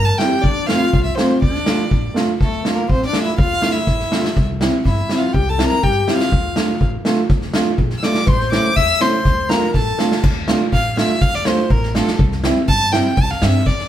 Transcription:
Already playing: clarinet A#4
0.05 violin A5
0.18 upright piano G3 C4 E4, clarinet G4, violin G5, snare
0.42 upright bass F2, clarinet D4, violin D5, kick
0.67 upright piano A3 C4 F4, clarinet F4, violin F5, snare
0.93 upright bass C2, kick
1.04 violin E5
1.15 upright piano A3 C4 F4, clarinet C4, violin C5, snare
1.42 upright bass D2, clarinet D4, violin D5, kick
1.54 snare
1.66 upright piano A3 D4 F4, snare
1.91 upright bass A1, kick
2.14 upright piano A3 D4 F4, snare
2.40 upright bass D2, clarinet A3, violin A4, kick, snare
2.64 upright piano A3 D4 F4, snare
2.73 clarinet A#3, violin A#4
2.89 upright bass A1, clarinet C4, violin C5, kick
3.02 snare
3.06 clarinet D4, violin D5
3.13 upright piano A3 D4 F4, snare
3.22 clarinet E4, violin E5
3.38 upright bass D2, clarinet F4, violin F5, kick
3.62 upright piano A3 D4 E4, snare
3.72 clarinet E4, violin E5
3.86 upright bass A1, kick, snare
4.00 snare
4.11 upright piano A3 D4 F4, snare
4.21 clarinet F4, snare
4.37 upright bass C2, kick, snare
4.60 upright piano G3 C4 E4, snare
4.85 upright bass G2, clarinet E4, violin E5, kick, snare
5.09 upright piano G3 C4 E4, snare
5.18 clarinet F4, violin F5
5.33 upright bass C2, clarinet G4, violin G5, kick
5.49 clarinet A4, violin A5
5.58 upright piano G3 C4 E4, snare
5.67 clarinet A#4, violin A#5
5.83 upright bass G2, clarinet G4, violin G5, kick
6.08 upright piano G3 C4 E4, snare
6.15 clarinet F4, violin F5
6.20 snare
6.32 upright bass D2, kick
6.56 upright piano A3 D4 F4, snare
6.81 upright bass A1, kick
7.05 upright piano A3 D4 F4, snare
7.29 upright bass D2, kick, snare
7.42 snare
7.54 upright piano A3 D4 F4, snare
7.78 upright bass A#1, kick
7.90 snare
7.98 violin E6
8.03 upright piano A3 D4 F4, clarinet D5, violin D6, snare
8.14 snare
8.26 upright bass A1, clarinet C5, violin C6, kick, snare
8.40 snare
8.52 upright piano A3 C#4 E4, violin D6, snare
8.76 upright bass E2, clarinet E5, violin E6, kick, snare
9.00 upright piano A3 C#4 E4, clarinet C5, violin C6, snare
9.25 upright bass D2, kick, snare
9.49 upright piano A3 D4 F4, clarinet A#4, violin A#5, snare
9.74 upright bass A1, clarinet A4, violin A5, kick, snare
9.98 upright piano A3 D4 F4, snare
10.12 snare
10.23 upright bass D2, kick, snare, crash
10.47 upright piano A3 D4 F4, snare
10.72 upright bass A1, violin F5, kick, snare
10.97 upright piano A3 D4 F4, violin E5, snare
11.21 upright bass D2, violin F5, kick, snare
11.34 violin D5, snare
11.45 upright piano A3 D4 F4, violin C5, snare
11.70 upright bass A1, violin A#4, kick
11.83 snare
11.94 upright piano A3 D4 F4, violin A4, snare
12.07 snare
12.19 upright bass C2, kick
12.32 snare
12.44 upright piano G3 C4 E4, snare
12.68 upright bass G2, violin A5, kick, snare
12.92 upright piano G3 C4 E4, violin G5, snare
13.17 upright bass C2, violin A5, kick
13.30 violin F5, snare
13.42 upright bass G2, upright piano G3 C4 D4, violin E5, snare
13.66 upright bass E2, violin D5, kick, snare
13.79 snare

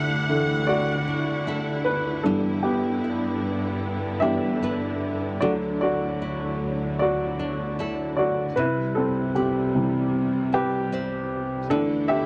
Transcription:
Already playing: string section D2 D3 E4 F#5, nylon-string guitar D3 E4, grand piano D4 G4 A4 E5
0.29 grand piano D3 E3 A3
0.67 grand piano F#4 D5
1.08 nylon-string guitar D4
1.47 nylon-string guitar D4 E4 A4
1.85 grand piano D4 B4
2.23 grand piano G2 E3 B3 D4 A4, string section G2 B3, nylon-string guitar G3
2.63 grand piano B3 G4
3.04 nylon-string guitar E4
4.20 grand piano G2 E3 B3 G4 E5, nylon-string guitar D4
4.62 nylon-string guitar D4 E4 B4
5.41 string section D2 F#3, grand piano D3 F#3 A3 F#4 D5, nylon-string guitar D3
5.81 grand piano F#4 D5
6.22 nylon-string guitar E4
6.99 grand piano F#4 D5
7.39 nylon-string guitar D4
7.79 nylon-string guitar D4 E4 A4
8.17 grand piano F#4 D5
8.56 string section C2 C3 G3, nylon-string guitar C3, grand piano E4 B4
8.95 grand piano C4 A4
9.35 grand piano C4 G4, nylon-string guitar E4
9.75 grand piano C3 E3 G3
10.53 nylon-string guitar C4, grand piano G4 B4
10.92 nylon-string guitar C4 E4 C5
11.69 string section D2 D3 E3 E4, grand piano D3 E3 A3 D4 A4, nylon-string guitar D3
12.08 grand piano G4 E5

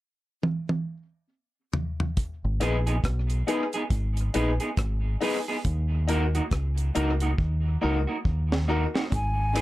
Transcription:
0.43 high tom
0.69 high tom
1.73 floor tom
2.00 floor tom
2.17 kick, closed hi-hat
2.45 fingered electric bass G#1
2.60 fingered electric bass A#1, clean electric guitar B3 D#4 G#4, upright piano D#4 G#4 B4, cross-stick, closed hi-hat
2.87 clean electric guitar B3 D#4 G#4, closed hi-hat
3.04 fingered electric bass B1, kick, cross-stick, closed hi-hat
3.30 closed hi-hat
3.47 clean electric guitar B3 D#4 G#4, upright piano D#4 G#4 B4, closed hi-hat
3.73 clean electric guitar B3 D#4 G#4, closed hi-hat
3.90 fingered electric bass G#1, kick, closed hi-hat
4.17 closed hi-hat
4.34 fingered electric bass A#1, clean electric guitar B3 D#4 G#4, upright piano D#4 G#4 B4, closed hi-hat
4.60 clean electric guitar B3 D#4 G#4, closed hi-hat
4.77 fingered electric bass G#1, kick, cross-stick, closed hi-hat
5.21 clean electric guitar B3 D#4 G#4, upright piano D#4 G#4 B4, open hi-hat
5.48 clean electric guitar B3 D#4 G#4
5.65 fingered electric bass D#2, kick, closed hi-hat
6.08 clean electric guitar A#3 D#4 F#4, upright piano D#4 F#4 A#4, closed hi-hat
6.35 clean electric guitar A#3 D#4 F#4, closed hi-hat
6.51 fingered electric bass C#2, kick, cross-stick, closed hi-hat
6.78 closed hi-hat
6.95 fingered electric bass C#2, clean electric guitar A#3 D#4 F#4, upright piano D#4 F#4 A#4, closed hi-hat
7.20 clean electric guitar A#3 D#4 F#4, closed hi-hat
7.38 fingered electric bass D#2, kick
7.81 fingered electric bass C#2, clean electric guitar A#3 D#4 F#4, upright piano D#4 F#4 A#4
8.07 clean electric guitar A#3 D#4 F#4
8.25 fingered electric bass D#2, kick
8.52 snare
8.68 clean electric guitar A#3 D#4 F#4, upright piano D#4 F#4 A#4
8.94 clean electric guitar A#3 D#4 F#4, snare
9.12 fingered electric bass G#1, flute G#5, kick, closed hi-hat
9.55 clean electric guitar B3 D#4 G#4, upright piano D#4 G#4 B4, cross-stick, closed hi-hat

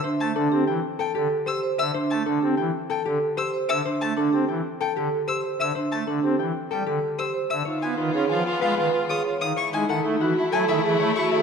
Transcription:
Already playing: harp G4 A4 E5 G5
0.04 vibraphone D4, harp C5
0.20 pipe organ A3, violin A5
0.36 pipe organ D3, vibraphone D4, harp A4
0.52 pipe organ C4, vibraphone G4
0.67 pipe organ E3, harp G5
0.99 harp A4, violin G5
1.15 pipe organ D3, harp G4, vibraphone A4
1.46 vibraphone G4, harp C5, violin E6
1.63 vibraphone C5
1.78 pipe organ D3, harp E5, violin E6
1.94 vibraphone D4, harp C5
2.10 pipe organ A3, violin A5
2.26 pipe organ D3, vibraphone D4, harp A4
2.43 pipe organ C4, vibraphone G4
2.57 pipe organ E3, harp G5
2.90 harp A4, violin G5
3.05 pipe organ D3, harp G4, vibraphone A4
3.37 vibraphone G4, harp C5, violin E6
3.54 vibraphone C5
3.69 pipe organ D3, harp E5, violin E6
3.85 vibraphone D4, harp C5
4.01 pipe organ A3, violin A5
4.17 pipe organ D3, vibraphone D4, harp A4
4.33 pipe organ C4, vibraphone G4
4.49 pipe organ E3, harp G5
4.80 harp A4, violin G5
4.96 pipe organ D3, harp G4, vibraphone A4
5.28 vibraphone G4, harp C5, violin E6
5.44 vibraphone C5
5.59 pipe organ D3, harp E5, violin E6
5.75 vibraphone D4, harp C5
5.92 pipe organ A3, violin A5
6.07 pipe organ D3, vibraphone D4, harp A4
6.23 pipe organ C4, vibraphone G4
6.39 pipe organ E3, harp G5
6.71 pipe organ G3, harp A4, violin G5
6.86 pipe organ D3, harp G4, vibraphone A4
7.19 vibraphone G4, harp C5, violin E6
7.34 vibraphone C5
7.50 pipe organ D3, harp E5, violin E6
7.65 violin section B3 F4, vibraphone D#4, soprano saxophone F4, harp C#5
7.82 pipe organ B3, soprano saxophone F4, violin G#5
7.97 pipe organ D#3, vibraphone D#4, soprano saxophone F4, harp B4
8.14 pipe organ C#4, soprano saxophone F4, vibraphone G#4
8.29 pipe organ F3, soprano saxophone F4, harp G#5
8.45 soprano saxophone F4
8.61 pipe organ G#3, soprano saxophone F4, harp B4, violin F5
8.77 pipe organ D#3, soprano saxophone F4, harp G#4, vibraphone B4
8.94 soprano saxophone F4
9.09 soprano saxophone F4, vibraphone G#4, harp C#5, violin D#6
9.25 soprano saxophone F4, vibraphone C#5
9.41 pipe organ D#3, harp F5, violin D#6
9.56 violin section A3 E4, soprano saxophone E4, harp C#5, violin C#6
9.72 pipe organ G#3, vibraphone D#4, soprano saxophone E4, violin G#5
9.89 pipe organ D#3, soprano saxophone E4, harp A4, violin F#5
10.04 pipe organ A3, vibraphone D#4, soprano saxophone E4
10.20 pipe organ E3, soprano saxophone E4, vibraphone F#4, harp F#5
10.36 soprano saxophone E4
10.51 pipe organ F#3, soprano saxophone E4, vibraphone A4, harp A4, violin G#5
10.68 pipe organ D#3, soprano saxophone E4, harp G#4, violin E5
10.83 pipe organ E3, soprano saxophone E4, vibraphone G#4
10.99 pipe organ A3, soprano saxophone E4, harp C#5
11.16 soprano saxophone E4, vibraphone F#4, violin C#6
11.31 pipe organ D#3, soprano saxophone E4, vibraphone A4, harp E5

